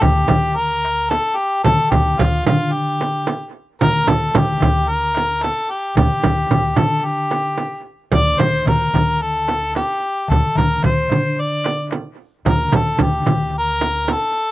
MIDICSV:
0, 0, Header, 1, 5, 480
1, 0, Start_track
1, 0, Tempo, 540541
1, 1465, Time_signature, 4, 2, 24, 8
1, 12890, End_track
2, 0, Start_track
2, 0, Title_t, "Harmonica"
2, 0, Program_c, 0, 22
2, 20, Note_on_c, 0, 67, 90
2, 499, Note_on_c, 0, 70, 92
2, 513, Note_off_c, 0, 67, 0
2, 973, Note_on_c, 0, 69, 84
2, 987, Note_off_c, 0, 70, 0
2, 1208, Note_on_c, 0, 67, 88
2, 1221, Note_off_c, 0, 69, 0
2, 1450, Note_off_c, 0, 67, 0
2, 1456, Note_on_c, 0, 69, 92
2, 1691, Note_on_c, 0, 67, 85
2, 1704, Note_off_c, 0, 69, 0
2, 1946, Note_on_c, 0, 65, 74
2, 1960, Note_off_c, 0, 67, 0
2, 2181, Note_off_c, 0, 65, 0
2, 2186, Note_on_c, 0, 65, 76
2, 2418, Note_on_c, 0, 67, 81
2, 2431, Note_off_c, 0, 65, 0
2, 3140, Note_off_c, 0, 67, 0
2, 3388, Note_on_c, 0, 70, 97
2, 3630, Note_on_c, 0, 69, 90
2, 3644, Note_off_c, 0, 70, 0
2, 3885, Note_on_c, 0, 67, 91
2, 3898, Note_off_c, 0, 69, 0
2, 4340, Note_on_c, 0, 70, 103
2, 4354, Note_off_c, 0, 67, 0
2, 4821, Note_on_c, 0, 69, 85
2, 4834, Note_off_c, 0, 70, 0
2, 5065, Note_on_c, 0, 67, 83
2, 5078, Note_off_c, 0, 69, 0
2, 5299, Note_off_c, 0, 67, 0
2, 5304, Note_on_c, 0, 67, 94
2, 6021, Note_on_c, 0, 69, 85
2, 6034, Note_off_c, 0, 67, 0
2, 6262, Note_on_c, 0, 67, 79
2, 6275, Note_off_c, 0, 69, 0
2, 6981, Note_off_c, 0, 67, 0
2, 7216, Note_on_c, 0, 74, 99
2, 7458, Note_on_c, 0, 72, 91
2, 7471, Note_off_c, 0, 74, 0
2, 7699, Note_off_c, 0, 72, 0
2, 7707, Note_on_c, 0, 70, 87
2, 8185, Note_on_c, 0, 69, 87
2, 8198, Note_off_c, 0, 70, 0
2, 8662, Note_off_c, 0, 69, 0
2, 8667, Note_on_c, 0, 67, 79
2, 9141, Note_on_c, 0, 69, 84
2, 9155, Note_off_c, 0, 67, 0
2, 9383, Note_on_c, 0, 70, 80
2, 9396, Note_off_c, 0, 69, 0
2, 9622, Note_off_c, 0, 70, 0
2, 9628, Note_on_c, 0, 72, 83
2, 10126, Note_on_c, 0, 74, 82
2, 10139, Note_off_c, 0, 72, 0
2, 10594, Note_off_c, 0, 74, 0
2, 11077, Note_on_c, 0, 70, 83
2, 11324, Note_on_c, 0, 69, 78
2, 11338, Note_off_c, 0, 70, 0
2, 11562, Note_on_c, 0, 67, 80
2, 11575, Note_off_c, 0, 69, 0
2, 12034, Note_off_c, 0, 67, 0
2, 12059, Note_on_c, 0, 70, 90
2, 12543, Note_on_c, 0, 69, 90
2, 12556, Note_off_c, 0, 70, 0
2, 12890, Note_off_c, 0, 69, 0
2, 12890, End_track
3, 0, Start_track
3, 0, Title_t, "Upright bass"
3, 0, Program_c, 1, 32
3, 17, Note_on_c, 1, 38, 92
3, 211, Note_off_c, 1, 38, 0
3, 262, Note_on_c, 1, 38, 80
3, 1026, Note_off_c, 1, 38, 0
3, 1466, Note_on_c, 1, 38, 99
3, 1561, Note_off_c, 1, 38, 0
3, 1700, Note_on_c, 1, 38, 83
3, 1893, Note_off_c, 1, 38, 0
3, 1947, Note_on_c, 1, 38, 86
3, 2136, Note_off_c, 1, 38, 0
3, 2186, Note_on_c, 1, 50, 84
3, 2947, Note_off_c, 1, 50, 0
3, 3386, Note_on_c, 1, 38, 95
3, 3575, Note_off_c, 1, 38, 0
3, 3624, Note_on_c, 1, 38, 79
3, 3814, Note_off_c, 1, 38, 0
3, 3851, Note_on_c, 1, 38, 93
3, 4046, Note_off_c, 1, 38, 0
3, 4099, Note_on_c, 1, 38, 81
3, 4862, Note_off_c, 1, 38, 0
3, 5300, Note_on_c, 1, 38, 107
3, 5395, Note_off_c, 1, 38, 0
3, 5546, Note_on_c, 1, 38, 79
3, 5734, Note_off_c, 1, 38, 0
3, 5781, Note_on_c, 1, 38, 78
3, 5971, Note_off_c, 1, 38, 0
3, 6021, Note_on_c, 1, 50, 83
3, 6782, Note_off_c, 1, 50, 0
3, 7216, Note_on_c, 1, 38, 90
3, 7408, Note_off_c, 1, 38, 0
3, 7458, Note_on_c, 1, 38, 79
3, 7649, Note_off_c, 1, 38, 0
3, 7691, Note_on_c, 1, 38, 85
3, 7885, Note_off_c, 1, 38, 0
3, 7933, Note_on_c, 1, 38, 76
3, 8698, Note_off_c, 1, 38, 0
3, 9145, Note_on_c, 1, 38, 104
3, 9238, Note_off_c, 1, 38, 0
3, 9385, Note_on_c, 1, 38, 81
3, 9574, Note_off_c, 1, 38, 0
3, 9625, Note_on_c, 1, 38, 79
3, 9814, Note_off_c, 1, 38, 0
3, 9862, Note_on_c, 1, 50, 84
3, 10625, Note_off_c, 1, 50, 0
3, 11059, Note_on_c, 1, 38, 94
3, 11251, Note_off_c, 1, 38, 0
3, 11301, Note_on_c, 1, 38, 83
3, 11493, Note_off_c, 1, 38, 0
3, 11535, Note_on_c, 1, 38, 88
3, 11730, Note_off_c, 1, 38, 0
3, 11781, Note_on_c, 1, 38, 78
3, 12547, Note_off_c, 1, 38, 0
3, 12890, End_track
4, 0, Start_track
4, 0, Title_t, "Darbuka"
4, 24, Note_on_c, 9, 64, 85
4, 112, Note_off_c, 9, 64, 0
4, 260, Note_on_c, 9, 64, 88
4, 349, Note_off_c, 9, 64, 0
4, 752, Note_on_c, 9, 63, 66
4, 841, Note_off_c, 9, 63, 0
4, 877, Note_on_c, 9, 62, 23
4, 966, Note_off_c, 9, 62, 0
4, 994, Note_on_c, 9, 63, 63
4, 1082, Note_off_c, 9, 63, 0
4, 1476, Note_on_c, 9, 64, 86
4, 1565, Note_off_c, 9, 64, 0
4, 1714, Note_on_c, 9, 64, 86
4, 1803, Note_off_c, 9, 64, 0
4, 1953, Note_on_c, 9, 64, 91
4, 2042, Note_off_c, 9, 64, 0
4, 2194, Note_on_c, 9, 64, 92
4, 2283, Note_off_c, 9, 64, 0
4, 2673, Note_on_c, 9, 63, 65
4, 2762, Note_off_c, 9, 63, 0
4, 2913, Note_on_c, 9, 63, 70
4, 3002, Note_off_c, 9, 63, 0
4, 3387, Note_on_c, 9, 64, 99
4, 3475, Note_off_c, 9, 64, 0
4, 3625, Note_on_c, 9, 64, 91
4, 3714, Note_off_c, 9, 64, 0
4, 3859, Note_on_c, 9, 64, 96
4, 3948, Note_off_c, 9, 64, 0
4, 4088, Note_on_c, 9, 64, 92
4, 4177, Note_off_c, 9, 64, 0
4, 4569, Note_on_c, 9, 63, 65
4, 4658, Note_off_c, 9, 63, 0
4, 4693, Note_on_c, 9, 62, 27
4, 4782, Note_off_c, 9, 62, 0
4, 4806, Note_on_c, 9, 63, 64
4, 4895, Note_off_c, 9, 63, 0
4, 5287, Note_on_c, 9, 64, 75
4, 5376, Note_off_c, 9, 64, 0
4, 5535, Note_on_c, 9, 64, 78
4, 5624, Note_off_c, 9, 64, 0
4, 5781, Note_on_c, 9, 64, 80
4, 5870, Note_off_c, 9, 64, 0
4, 5894, Note_on_c, 9, 62, 27
4, 5982, Note_off_c, 9, 62, 0
4, 6010, Note_on_c, 9, 64, 84
4, 6099, Note_off_c, 9, 64, 0
4, 6256, Note_on_c, 9, 62, 28
4, 6345, Note_off_c, 9, 62, 0
4, 6499, Note_on_c, 9, 63, 59
4, 6588, Note_off_c, 9, 63, 0
4, 6624, Note_on_c, 9, 62, 25
4, 6713, Note_off_c, 9, 62, 0
4, 6727, Note_on_c, 9, 63, 61
4, 6816, Note_off_c, 9, 63, 0
4, 6977, Note_on_c, 9, 62, 25
4, 7065, Note_off_c, 9, 62, 0
4, 7210, Note_on_c, 9, 64, 90
4, 7299, Note_off_c, 9, 64, 0
4, 7452, Note_on_c, 9, 64, 84
4, 7541, Note_off_c, 9, 64, 0
4, 7688, Note_on_c, 9, 64, 91
4, 7777, Note_off_c, 9, 64, 0
4, 7937, Note_on_c, 9, 64, 92
4, 8025, Note_off_c, 9, 64, 0
4, 8417, Note_on_c, 9, 63, 56
4, 8506, Note_off_c, 9, 63, 0
4, 8551, Note_on_c, 9, 62, 27
4, 8640, Note_off_c, 9, 62, 0
4, 8658, Note_on_c, 9, 63, 65
4, 8747, Note_off_c, 9, 63, 0
4, 9130, Note_on_c, 9, 64, 84
4, 9219, Note_off_c, 9, 64, 0
4, 9372, Note_on_c, 9, 64, 85
4, 9460, Note_off_c, 9, 64, 0
4, 9613, Note_on_c, 9, 64, 86
4, 9702, Note_off_c, 9, 64, 0
4, 9852, Note_on_c, 9, 64, 86
4, 9941, Note_off_c, 9, 64, 0
4, 10339, Note_on_c, 9, 63, 68
4, 10428, Note_off_c, 9, 63, 0
4, 10574, Note_on_c, 9, 63, 65
4, 10663, Note_off_c, 9, 63, 0
4, 11057, Note_on_c, 9, 64, 80
4, 11146, Note_off_c, 9, 64, 0
4, 11295, Note_on_c, 9, 64, 85
4, 11384, Note_off_c, 9, 64, 0
4, 11528, Note_on_c, 9, 64, 85
4, 11616, Note_off_c, 9, 64, 0
4, 11775, Note_on_c, 9, 64, 89
4, 11864, Note_off_c, 9, 64, 0
4, 12265, Note_on_c, 9, 63, 66
4, 12354, Note_off_c, 9, 63, 0
4, 12377, Note_on_c, 9, 62, 26
4, 12466, Note_off_c, 9, 62, 0
4, 12507, Note_on_c, 9, 63, 64
4, 12596, Note_off_c, 9, 63, 0
4, 12890, End_track
5, 0, Start_track
5, 0, Title_t, "Frame drum"
5, 15, Note_on_c, 9, 64, 86
5, 103, Note_off_c, 9, 64, 0
5, 249, Note_on_c, 9, 64, 84
5, 337, Note_off_c, 9, 64, 0
5, 985, Note_on_c, 9, 64, 68
5, 1074, Note_off_c, 9, 64, 0
5, 1460, Note_on_c, 9, 64, 91
5, 1549, Note_off_c, 9, 64, 0
5, 1702, Note_on_c, 9, 64, 92
5, 1791, Note_off_c, 9, 64, 0
5, 1948, Note_on_c, 9, 64, 91
5, 2037, Note_off_c, 9, 64, 0
5, 2189, Note_on_c, 9, 64, 92
5, 2278, Note_off_c, 9, 64, 0
5, 2671, Note_on_c, 9, 64, 63
5, 2760, Note_off_c, 9, 64, 0
5, 2904, Note_on_c, 9, 64, 68
5, 2993, Note_off_c, 9, 64, 0
5, 3383, Note_on_c, 9, 64, 94
5, 3472, Note_off_c, 9, 64, 0
5, 3619, Note_on_c, 9, 64, 89
5, 3708, Note_off_c, 9, 64, 0
5, 3861, Note_on_c, 9, 64, 94
5, 3949, Note_off_c, 9, 64, 0
5, 4105, Note_on_c, 9, 64, 84
5, 4193, Note_off_c, 9, 64, 0
5, 4592, Note_on_c, 9, 64, 64
5, 4681, Note_off_c, 9, 64, 0
5, 4832, Note_on_c, 9, 64, 64
5, 4921, Note_off_c, 9, 64, 0
5, 5301, Note_on_c, 9, 64, 95
5, 5389, Note_off_c, 9, 64, 0
5, 5537, Note_on_c, 9, 64, 85
5, 5625, Note_off_c, 9, 64, 0
5, 5779, Note_on_c, 9, 64, 85
5, 5868, Note_off_c, 9, 64, 0
5, 6007, Note_on_c, 9, 64, 90
5, 6096, Note_off_c, 9, 64, 0
5, 6492, Note_on_c, 9, 64, 57
5, 6581, Note_off_c, 9, 64, 0
5, 6728, Note_on_c, 9, 64, 57
5, 6817, Note_off_c, 9, 64, 0
5, 7207, Note_on_c, 9, 64, 83
5, 7296, Note_off_c, 9, 64, 0
5, 7456, Note_on_c, 9, 64, 86
5, 7544, Note_off_c, 9, 64, 0
5, 7700, Note_on_c, 9, 64, 84
5, 7789, Note_off_c, 9, 64, 0
5, 7945, Note_on_c, 9, 64, 79
5, 8034, Note_off_c, 9, 64, 0
5, 8423, Note_on_c, 9, 64, 58
5, 8511, Note_off_c, 9, 64, 0
5, 8669, Note_on_c, 9, 64, 66
5, 8758, Note_off_c, 9, 64, 0
5, 9159, Note_on_c, 9, 64, 74
5, 9248, Note_off_c, 9, 64, 0
5, 9396, Note_on_c, 9, 64, 73
5, 9485, Note_off_c, 9, 64, 0
5, 9624, Note_on_c, 9, 64, 79
5, 9713, Note_off_c, 9, 64, 0
5, 9872, Note_on_c, 9, 64, 75
5, 9960, Note_off_c, 9, 64, 0
5, 10352, Note_on_c, 9, 64, 67
5, 10441, Note_off_c, 9, 64, 0
5, 10589, Note_on_c, 9, 64, 67
5, 10677, Note_off_c, 9, 64, 0
5, 11064, Note_on_c, 9, 64, 86
5, 11153, Note_off_c, 9, 64, 0
5, 11300, Note_on_c, 9, 64, 86
5, 11389, Note_off_c, 9, 64, 0
5, 11532, Note_on_c, 9, 64, 81
5, 11621, Note_off_c, 9, 64, 0
5, 11780, Note_on_c, 9, 64, 78
5, 11869, Note_off_c, 9, 64, 0
5, 12266, Note_on_c, 9, 64, 65
5, 12355, Note_off_c, 9, 64, 0
5, 12504, Note_on_c, 9, 64, 69
5, 12593, Note_off_c, 9, 64, 0
5, 12890, End_track
0, 0, End_of_file